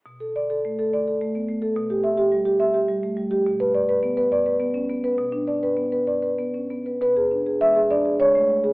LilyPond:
\new Staff \with { instrumentName = "Marimba" } { \time 3/4 \key b \minor \tempo 4 = 103 << { r2. | r2. | r2. | r2. |
b'4 e''8 d''8 cis''4 | } \\ { b,16 a'16 d''16 a'16 a16 a'16 d''16 a'16 a16 b16 a16 a'16 | b,16 g'16 e''16 g'16 g16 g'16 e''16 g'16 g16 a16 g16 g'16 | b,16 b'16 d''16 b'16 b16 b'16 d''16 b'16 b16 cis'16 b16 b'16 | b,16 d'16 d''16 b'16 b16 b'16 d''16 b'16 b16 cis'16 b16 b'16 |
b,16 gis'16 d'16 gis'16 gis16 gis'16 d'16 gis'16 gis16 a16 gis16 gis'16 | } >> }